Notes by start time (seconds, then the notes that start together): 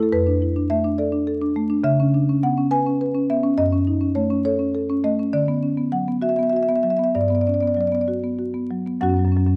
0.00 E4 A4
0.12 F2 B4
0.27 D4
0.42 E4
0.56 D4
0.70 A3 E5
0.84 D4
0.98 A4 D5
1.12 D4
1.27 A4
1.41 D4
1.56 A3
1.70 D4
1.83 C#3 E5
2.00 C#4
2.14 D4
2.29 C#4
2.43 B3 F#5
2.58 C#4
2.71 B4 G#5
2.86 C#4
3.01 B4
3.14 C#4
3.30 B3 E5
3.43 C#4
3.58 F#2 D#5
3.72 C#4
3.87 D#4
4.01 C#4
4.15 A3 C#5
4.30 C#4
4.45 A4 C#5
4.59 C#4
4.75 A4
4.90 C#4
5.04 A3 D#5
5.19 C#4
5.33 D3 D5
5.48 B3
5.63 C#4
5.77 B3
5.92 F#3 F#5
6.08 B3
6.22 F#4 E5
6.29 E5
6.36 B3 E5
6.43 E5
6.50 F#4 E5
6.56 E5
6.63 E5
6.69 B3 E5
6.76 E5
6.83 F#3 E5
6.90 E5
6.97 B3 E5
7.04 E5
7.15 G2 D5
7.21 D5
7.28 B3 D5
7.35 D5
7.41 D5
7.47 C#4 D5
7.54 D5
7.60 B3 D5
7.67 D5
7.74 F#3 D5
7.81 D5
7.87 D5
7.92 B3 D5
8.01 D5
8.08 F#4
8.24 B3
8.39 F#4
8.54 B3
8.70 F#3
8.87 B3
9.01 F#2 F#3 C#4 F#4 F#5
9.09 F#3 C#4
9.14 F#2 C#4
9.19 F#3
9.25 F#2 F#3 C#4
9.32 C#4
9.36 F#2 F#3 C#4
9.47 F#2 F#3 C#4